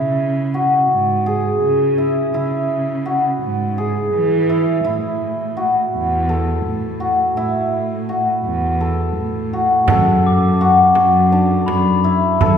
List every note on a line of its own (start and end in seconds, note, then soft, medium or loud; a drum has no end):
0.00 0.79 C#3 medium
0.00 1.98 E4 medium
0.00 0.54 F#4 medium
0.00 1.26 G#4 medium
0.54 3.05 F#4 medium
0.91 1.55 G#2 medium
1.26 3.77 G#4 medium
1.63 2.27 C#3 medium
1.98 2.34 E4 medium
2.34 3.31 C#3 medium
2.34 4.49 E4 medium
3.06 5.56 F#4 medium
3.42 4.06 G#2 medium
3.78 6.35 G#4 medium
4.14 4.78 E3 medium
4.50 4.84 E4 medium
4.85 5.82 A2 medium
4.85 7.37 E4 medium
5.57 7.00 F#4 medium
5.94 6.58 E2 medium
6.29 8.80 A4 medium
6.66 7.30 A2 medium
7.00 8.09 F#4 medium
7.37 8.34 A2 medium
7.37 10.85 E4 medium
8.09 9.53 F#4 medium
8.45 9.09 E2 medium
8.81 9.89 A4 medium
9.16 9.81 A2 medium
9.53 10.61 F#4 medium
9.88 10.85 F#2 medium
9.88 12.41 A4 medium
9.88 frame drum medium
10.26 11.16 D6 medium
10.61 12.58 F#4 medium
10.95 11.61 F#2 medium
10.95 frame drum soft
11.32 12.58 D4 medium
11.66 12.00 F#2 medium
11.66 12.58 B5 medium
11.66 frame drum soft
12.04 12.58 E4 medium
12.04 frame drum soft
12.40 12.58 F#2 medium
12.40 12.58 A4 medium
12.40 frame drum soft